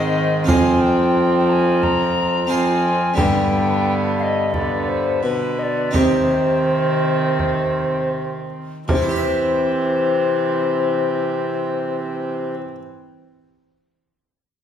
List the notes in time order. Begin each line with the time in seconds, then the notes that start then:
Already playing: G#2 D#3 C4 C5 D#5
0.44 F3 C4 F4 C5
0.48 F2 C4 G#5, frame drum
0.82 G5
1.49 G#5 A#5
1.83 A#5, frame drum
2.47 F3 C4 F4 C5 G#5
3.14 G2 D3 G3 B3 G4 G5, frame drum
3.18 D3
4.19 F5
4.23 D#5
4.53 D3 B3 D5, frame drum
4.89 C5
5.23 B2 D3 B3 B4
5.59 D#5
5.63 D5
5.91 C3 D#3 C4 D#4 G4, frame drum
5.95 C3 C5
7.39 frame drum
8.88 C3 E3 C4 C5, frame drum
8.95 C4
9.02 E4
9.09 G4
9.16 E5